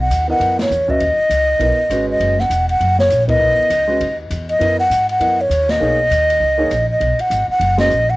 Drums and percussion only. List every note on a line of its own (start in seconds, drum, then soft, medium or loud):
0.11 hi-hat pedal medium
0.11 ride medium
0.41 ride soft
0.59 snare medium
0.59 ride medium
0.71 hi-hat pedal soft
0.89 kick soft
1.00 ride soft
1.31 hi-hat pedal medium
1.31 ride medium
1.60 ride soft
1.90 hi-hat pedal medium
1.90 ride medium
2.20 ride soft
2.39 snare soft
2.51 hi-hat pedal medium
2.51 ride medium
2.69 ride soft
2.81 ride soft
2.99 snare soft
3.10 hi-hat pedal medium
3.10 ride medium
3.28 kick medium
3.28 ride medium
3.70 hi-hat pedal soft
3.70 ride medium
4.01 ride soft
4.31 hi-hat pedal soft
4.31 ride medium
4.49 ride soft
4.61 ride soft
4.91 hi-hat pedal medium
4.91 ride medium
5.09 ride soft
5.21 ride medium
5.51 hi-hat pedal medium
5.51 ride medium
5.69 snare medium
5.69 ride medium
6.11 hi-hat pedal soft
6.11 ride medium
6.30 ride soft
6.71 hi-hat pedal medium
6.71 ride medium
7.01 ride soft
7.19 ride soft
7.31 hi-hat pedal soft
7.31 ride medium
7.61 ride medium
7.78 snare medium
7.78 ride medium
7.90 hi-hat pedal soft